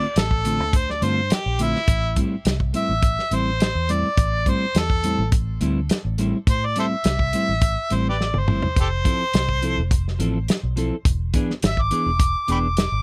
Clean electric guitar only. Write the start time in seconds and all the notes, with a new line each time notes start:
0.44 D3 A3 C4 F4
1.01 D3 A3 C4 F4
1.58 D3 A3 C4 F4
2.16 A2 G3 C4 E4
2.73 A2 G3 C4 E4
3.31 A2 G3 C4 E4
3.88 A2 G3 C4 E4
4.46 A2 G3 C4 E4
5.03 A2 G3 C4 E4
5.60 A2 G3 C4 E4
6.18 A2 G3 C4 E4
6.75 A2 G3 C4 E4
7.33 A2 G3 C4 E4
7.90 A2 G3 C4 E4
8.47 A2 G3 C4 E4
9.04 F3 C4 E4 A4
9.62 F3 C4 E4 A4
10.19 F3 C4 E4 A4
10.76 F3 C4 E4 A4
11.33 E3 B3 D4 G#4
11.90 E3 B3 D4 G#4
12.48 E3 B3 D4 G#4